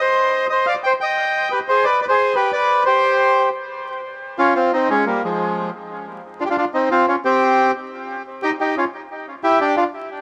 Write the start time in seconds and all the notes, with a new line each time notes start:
Already playing: D#5
0.01 C5
0.50 C5 D#5
0.66 D5 F5
0.84 C5 G5
1.01 D#5 G5
1.51 G4 B4
1.68 G#4 C5
1.84 B4 D5
2.02 B4 D5
2.09 G#4 C5
2.35 G4 B4
2.52 B4 D5
2.86 G4 C5
4.38 C#4 F4
4.55 C4 F4
4.73 C4 D#4
4.90 G#3 C#4
5.06 G3 A#3
5.24 F3 G#3
6.40 D4 F4
6.45 G4
6.50 D4 F4
6.58 D4 F4
6.74 C4 D#4
6.91 C4 F4
7.08 C#4 F4
7.25 C4 G4
8.43 D#4 G4
8.61 D#4 G4
8.78 C#4 F4
9.44 E4 G4
9.61 D4 G4
9.77 D4 F4